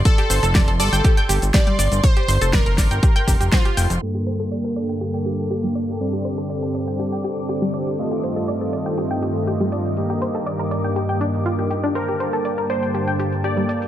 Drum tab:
HH |xxoxxxoxxxoxxxox|xxoxxxoxxxoxxxox|--xxxxxxxxxxxxxx|xxxxxxxxxxxxxxxx|
SH |x-xxx-xxx-xxx-xx|x-xxx-xxx-xxx-xx|--x-x-xx--xxx-xx|x-xxx-xxx-xxx-xx|
SD |----o-------o---|----o-o-----o---|----------------|----------------|
BD |o---o---o---o---|o---o-o-o-o-o---|----------------|----------------|

HH |xxxxxxxxxxxxxxxx|xxxxxxxxxxxxxxxx|xxxxxxxxxxxxxxxx|
SH |x-xxx-xxx-xxx-xx|x-xxx-xxx-xxx-xx|x-xxx-xxx-xxx-xx|
SD |----------------|----------------|----------------|
BD |----------------|----------------|----------------|